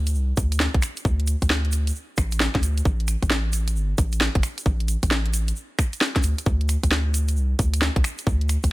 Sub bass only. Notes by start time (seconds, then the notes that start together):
Already playing: D2
0.15 C2
0.37 D2
0.74 C2
1.05 D2
1.42 D2
2.18 A1
2.55 D2
2.85 A1
3.22 A1
3.76 G1
3.98 A1
4.35 G1
4.66 A1
5.03 A1
6.24 D2
6.46 D2
6.83 D2
7.36 C2
7.59 D2
7.96 C2
8.27 D2
8.64 D2